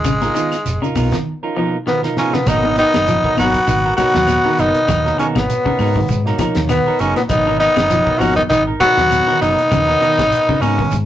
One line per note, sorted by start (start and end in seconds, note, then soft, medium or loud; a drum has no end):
0.00 0.93 G#3 medium
0.04 0.27 G#1 loud
0.04 0.23 C#3 medium
0.04 kick medium
0.04 closed hi-hat medium
0.04 low conga medium
0.04 claves medium
0.04 shekere medium
0.22 0.35 D#4 soft
0.22 0.35 F4 soft
0.22 0.35 A#4 medium
0.22 snare soft
0.22 high conga medium
0.22 shekere soft
0.35 0.53 D#3 medium
0.35 0.55 B3 medium
0.35 0.55 D#4 medium
0.35 0.55 F4 medium
0.35 muted clean electric guitar stroke medium
0.35 closed hi-hat medium
0.35 shekere medium
0.52 snare soft
0.52 closed hi-hat medium
0.52 claves medium
0.52 shekere soft
0.65 0.78 F1 loud
0.65 closed hi-hat medium
0.65 shekere medium
0.82 1.00 C#3 medium
0.82 0.95 D#4 soft
0.82 0.96 F4 soft
0.82 0.96 A#4 medium
0.82 shekere soft
0.95 1.08 B1 loud
0.95 1.15 B3 medium
0.95 1.16 D#4 medium
0.95 1.16 F4 medium
0.95 1.16 A#4 medium
0.95 kick medium
0.95 open hi-hat medium
0.95 high conga medium
0.95 claves medium
0.95 shekere medium
1.12 1.31 D#3 medium
1.12 kick medium
1.12 snare medium
1.12 closed hi-hat medium
1.12 shekere soft
1.42 1.49 F3 loud
1.42 1.49 C#4 loud
1.42 1.56 D#4 soft
1.42 1.57 F4 medium
1.42 1.56 A#4 medium
1.56 1.71 B2 medium
1.56 1.71 D#3 medium
1.56 1.75 F3 medium
1.56 1.72 F3 medium
1.56 1.72 A#3 medium
1.56 1.76 B3 medium
1.56 1.76 D#4 medium
1.56 1.76 F4 medium
1.56 1.77 A#4 medium
1.87 2.00 B2 medium
1.87 2.42 B2 medium
1.87 2.42 D#3 medium
1.87 2.05 D#3 medium
1.87 2.42 F3 medium
1.87 2.01 F3 medium
1.87 2.01 B3 medium
1.87 2.42 A#4 medium
1.87 snare soft
2.03 2.17 D#4 medium
2.03 2.17 F4 soft
2.03 2.17 A#4 medium
2.03 snare soft
2.17 2.33 C#3 medium
2.17 2.37 G#3 medium
2.17 2.37 B3 medium
2.17 2.36 C#4 medium
2.17 2.37 D#4 medium
2.17 2.37 F4 medium
2.17 2.37 A#4 medium
2.17 snare medium
2.33 2.47 B2 medium
2.33 2.42 C#3 medium
2.33 2.50 F3 medium
2.33 2.50 B3 medium
2.33 snare medium
2.46 2.83 G#1 medium
2.46 2.74 B2 medium
2.46 2.75 D#3 medium
2.46 2.76 D#3 medium
2.46 2.75 F#3 medium
2.46 2.75 A#3 medium
2.46 2.64 B3 medium
2.46 2.77 B3 medium
2.46 2.64 D#4 medium
2.46 2.78 D#4 loud
2.46 2.64 F#4 medium
2.46 2.64 A#4 medium
2.46 kick medium
2.46 snare soft
2.46 closed hi-hat medium
2.46 low conga medium
2.46 claves medium
2.46 shekere medium
2.63 2.83 D#3 medium
2.63 2.77 D#4 soft
2.63 2.77 F#4 soft
2.63 2.77 A#4 medium
2.63 high conga medium
2.76 3.34 D#3 medium
2.76 2.97 B3 medium
2.76 3.34 B3 medium
2.76 2.97 D#4 medium
2.76 3.34 D#4 loud
2.76 2.97 F#4 medium
2.76 2.97 A#4 medium
2.76 closed hi-hat soft
2.76 shekere soft
2.94 3.17 F#1 medium
2.94 snare medium
2.94 closed hi-hat soft
2.94 high conga loud
2.94 claves medium
3.07 3.50 B2 medium
3.07 3.49 D#3 medium
3.07 3.26 F3 medium
3.07 3.49 F#3 medium
3.07 3.50 A#4 medium
3.07 closed hi-hat medium
3.07 shekere medium
3.24 3.37 D#4 soft
3.24 3.38 F#4 medium
3.24 3.38 A#4 soft
3.24 kick medium
3.37 3.51 G#1 medium
3.37 3.94 F#3 medium
3.37 3.56 F#3 medium
3.37 3.94 B3 loud
3.37 3.57 B3 medium
3.37 3.58 D#4 medium
3.37 3.95 F#4 loud
3.37 3.58 A#4 medium
3.37 muted clean electric guitar stroke medium
3.37 open hi-hat medium
3.37 high conga medium
3.37 claves medium
3.37 shekere soft
3.54 kick medium
3.54 closed hi-hat medium
3.67 3.91 G#1 loud
3.67 3.86 D#3 medium
3.67 kick medium
3.67 closed hi-hat medium
3.67 shekere medium
3.85 3.98 F#4 soft
3.85 3.99 A#4 medium
3.97 4.26 B2 medium
3.97 4.26 D#3 medium
3.97 4.54 F#3 medium
3.97 4.26 F#3 medium
3.97 4.26 A#3 medium
3.97 4.18 B3 medium
3.97 4.61 B3 loud
3.97 4.18 D#4 medium
3.97 4.62 F#4 loud
3.97 4.18 F#4 medium
3.97 4.18 A#4 medium
3.97 kick medium
3.97 snare soft
3.97 closed hi-hat medium
3.97 high conga medium
3.97 claves medium
3.97 shekere soft
4.14 4.38 D#2 medium
4.14 4.33 F#3 medium
4.14 snare medium
4.14 low conga medium
4.27 closed hi-hat medium
4.27 high conga medium
4.27 claves medium
4.27 shekere medium
4.45 4.63 D#3 medium
4.45 4.58 D#4 soft
4.45 4.58 F#4 medium
4.45 4.58 A#4 soft
4.45 high conga medium
4.57 4.71 F#1 medium
4.57 4.79 B2 medium
4.57 5.18 D#3 medium
4.57 4.80 D#3 medium
4.57 4.79 F#3 medium
4.57 4.80 B3 medium
4.57 4.78 B3 medium
4.57 5.20 B3 medium
4.57 4.78 D#4 medium
4.57 5.19 D#4 loud
4.57 4.78 F#4 medium
4.57 4.78 A#4 medium
4.57 closed hi-hat medium
4.57 shekere soft
4.75 closed hi-hat medium
4.88 5.11 D#2 loud
4.88 muted clean electric guitar stroke medium
4.88 kick medium
4.88 closed hi-hat medium
4.88 low conga medium
4.88 claves medium
4.88 shekere medium
5.04 5.45 B2 medium
5.04 5.45 D#3 medium
5.04 5.45 F#3 medium
5.04 5.45 A#3 medium
5.04 5.19 F#4 soft
5.04 5.19 A#4 soft
5.04 snare soft
5.17 5.25 C#3 medium
5.17 5.37 D#3 medium
5.17 5.28 G#3 medium
5.17 5.38 B3 medium
5.17 5.27 C#4 medium
5.17 5.39 D#4 medium
5.17 5.39 F#4 medium
5.17 5.39 A#4 medium
5.17 closed hi-hat medium
5.17 shekere soft
5.34 5.46 G#1 medium
5.34 6.24 B2 medium
5.34 6.25 F#3 medium
5.34 6.25 B3 medium
5.34 kick medium
5.34 snare medium
5.34 high conga loud
5.34 claves medium
5.50 closed hi-hat medium
5.50 shekere medium
5.66 5.84 C#3 medium
5.66 5.79 D#4 soft
5.66 5.80 A#4 medium
5.66 muted fingered electric bass stroke soft
5.66 muted clean electric guitar stroke soft
5.66 kick medium
5.79 6.02 G#2 loud
5.79 5.99 B3 medium
5.79 5.99 D#4 medium
5.79 5.99 F#4 medium
5.79 6.00 A#4 medium
5.79 open hi-hat medium
5.79 high conga medium
5.79 claves medium
5.79 shekere soft
5.94 6.07 B2 medium
5.94 6.08 D#3 medium
5.94 6.14 D#3 medium
5.94 6.08 F#3 medium
5.94 6.08 A#3 medium
5.94 kick medium
6.08 6.32 G#2 medium
6.08 kick medium
6.08 closed hi-hat medium
6.08 shekere medium
6.25 6.72 B2 medium
6.25 6.72 D#3 medium
6.25 6.72 F#3 medium
6.25 6.72 A#3 loud
6.25 6.39 D#4 soft
6.25 6.40 F#4 medium
6.25 6.40 A#4 medium
6.25 snare soft
6.39 6.58 F3 medium
6.39 6.59 D#4 medium
6.39 6.60 A#4 medium
6.39 muted clean electric guitar stroke medium
6.39 kick medium
6.39 snare soft
6.39 closed hi-hat medium
6.39 high conga medium
6.39 claves medium
6.39 shekere soft
6.55 6.79 D#2 medium
6.55 snare medium
6.55 closed hi-hat soft
6.55 low conga medium
6.68 6.97 B2 medium
6.68 6.88 D#3 medium
6.68 7.01 F#3 medium
6.68 7.02 B3 medium
6.68 closed hi-hat medium
6.68 high conga medium
6.68 claves medium
6.68 shekere medium
6.86 6.99 D#4 soft
6.86 7.00 F#4 soft
6.86 7.00 A#4 medium
6.86 muted fingered electric bass stroke soft
6.99 7.13 F#1 loud
6.99 7.16 C#3 medium
6.99 7.16 G#3 medium
6.99 7.19 B3 medium
6.99 7.16 C#4 medium
6.99 7.20 D#4 medium
6.99 7.20 F#4 medium
6.99 7.20 A#4 medium
6.99 closed hi-hat soft
6.99 shekere soft
7.16 7.25 A#2 medium
7.16 7.22 B2 medium
7.16 7.23 F#3 medium
7.16 7.22 B3 medium
7.16 snare soft
7.16 closed hi-hat soft
7.29 7.66 G#1 loud
7.29 7.57 B2 medium
7.29 7.58 D#3 medium
7.29 7.57 F#3 medium
7.29 7.57 A#3 medium
7.29 7.58 B3 medium
7.29 7.58 D#4 loud
7.29 kick loud
7.29 closed hi-hat medium
7.29 low conga medium
7.29 claves medium
7.29 shekere medium
7.47 7.65 D#3 medium
7.47 7.59 D#4 soft
7.47 7.60 F#4 soft
7.47 7.60 A#4 medium
7.59 8.16 D#3 medium
7.59 8.22 B3 medium
7.59 7.79 B3 medium
7.59 8.20 D#4 loud
7.59 7.80 D#4 medium
7.59 7.80 A#4 medium
7.59 muted clean electric guitar stroke medium
7.59 snare soft
7.59 closed hi-hat soft
7.59 shekere soft
7.76 8.00 F#1 medium
7.76 snare medium
7.76 closed hi-hat soft
7.76 high conga loud
7.76 claves medium
7.89 8.32 B2 medium
7.89 8.32 D#3 medium
7.89 8.09 F3 medium
7.89 8.32 F#3 medium
7.89 8.32 A#4 medium
7.89 snare soft
7.89 closed hi-hat medium
7.89 shekere medium
8.06 8.19 D#4 soft
8.06 8.19 F#4 soft
8.06 8.20 A#4 soft
8.06 kick medium
8.19 8.33 G#1 loud
8.19 8.39 F3 medium
8.19 8.38 F#3 medium
8.19 8.35 C#4 medium
8.19 8.40 D#4 medium
8.19 8.35 F#4 loud
8.19 8.40 F#4 medium
8.19 8.40 A#4 medium
8.19 muted clean electric guitar stroke medium
8.19 open hi-hat medium
8.19 high conga medium
8.19 claves medium
8.19 shekere soft
8.36 8.44 D#3 medium
8.36 8.42 B3 medium
8.36 8.42 D#4 loud
8.36 kick medium
8.36 closed hi-hat soft
8.36 low conga medium
8.49 8.73 G#1 loud
8.49 8.69 D#3 medium
8.49 8.65 D#3 medium
8.49 8.63 B3 medium
8.49 8.63 D#4 loud
8.49 kick medium
8.49 snare soft
8.49 closed hi-hat medium
8.49 shekere medium
8.67 8.80 D#4 soft
8.67 8.80 A#4 medium
8.67 muted clean electric guitar stroke soft
8.80 9.08 B2 medium
8.80 9.08 D#3 medium
8.80 9.08 F#3 medium
8.80 9.38 F#3 medium
8.80 9.08 A#3 medium
8.80 9.37 B3 loud
8.80 9.00 D#4 medium
8.80 9.37 F#4 loud
8.80 9.01 F#4 medium
8.80 9.01 A#4 medium
8.80 kick medium
8.80 snare soft
8.80 closed hi-hat soft
8.80 high conga medium
8.80 claves medium
8.80 shekere soft
8.97 9.20 D#2 medium
8.97 9.16 F#3 medium
8.97 snare medium
8.97 low conga medium
9.10 closed hi-hat medium
9.10 high conga medium
9.10 claves medium
9.10 shekere medium
9.27 9.46 D#3 medium
9.27 9.40 D#4 soft
9.27 9.41 F#4 soft
9.27 9.41 A#4 medium
9.27 snare soft
9.40 9.54 F#1 loud
9.40 9.63 B2 medium
9.40 9.63 D#3 medium
9.40 10.58 D#3 medium
9.40 9.63 F#3 medium
9.40 9.63 A#3 medium
9.40 10.63 B3 loud
9.40 9.61 B3 medium
9.40 9.61 D#4 medium
9.40 10.63 D#4 loud
9.40 9.61 F#4 medium
9.40 9.61 A#4 medium
9.40 closed hi-hat soft
9.40 shekere soft
9.58 closed hi-hat medium
9.71 9.95 D#2 loud
9.71 9.90 C#3 medium
9.71 kick medium
9.71 closed hi-hat medium
9.71 low conga medium
9.71 claves medium
9.71 shekere medium
9.87 10.28 B2 medium
9.87 10.28 D#3 medium
9.87 10.28 F#3 medium
9.87 10.28 B3 medium
9.87 10.00 D#4 soft
9.87 10.01 F#4 soft
9.87 10.01 A#4 medium
9.87 snare soft
10.01 10.20 D#3 medium
10.01 10.21 B3 medium
10.01 10.21 D#4 medium
10.01 10.21 F#4 medium
10.01 10.21 A#4 medium
10.01 closed hi-hat medium
10.01 shekere soft
10.18 10.29 G#1 medium
10.18 kick medium
10.18 snare medium
10.18 high conga loud
10.18 claves medium
10.31 closed hi-hat medium
10.31 shekere medium
10.48 10.67 C#3 medium
10.48 10.61 D#4 soft
10.48 10.61 F#4 soft
10.48 10.62 A#4 medium
10.48 muted fingered electric bass stroke soft
10.48 kick medium
10.61 10.85 G#2 medium
10.61 10.96 C#3 medium
10.61 10.96 G#3 medium
10.61 10.81 B3 medium
10.61 10.95 C#4 medium
10.61 10.81 D#4 medium
10.61 10.82 F#4 medium
10.61 10.82 A#4 medium
10.61 open hi-hat medium
10.61 high conga medium
10.61 claves medium
10.61 shekere soft
10.78 10.91 B2 medium
10.78 10.97 D#3 medium
10.78 10.91 D#3 medium
10.78 10.91 F#3 medium
10.78 10.91 B3 medium
10.78 kick medium
10.91 11.05 G#2 loud
10.91 kick medium
10.91 closed hi-hat medium
10.91 shekere medium